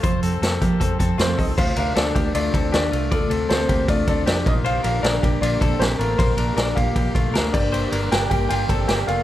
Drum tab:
CC |--------|x-------|--------|--------|
RD |--------|-xxxxxxx|xxxxxxxx|xxxxxxxx|
HH |xxxxxxxo|--------|--------|--------|
SD |--o---o-|--o---o-|--o---o-|--o---o-|
BD |o--ooo-o|o--o-o--|o--ooo-o|---o-o--|

CC |-------x|--------|
RD |xxxxxxx-|xxxxxxxx|
HH |--------|--------|
SD |--o---o-|--o---o-|
BD |o--ooo-o|---o-o--|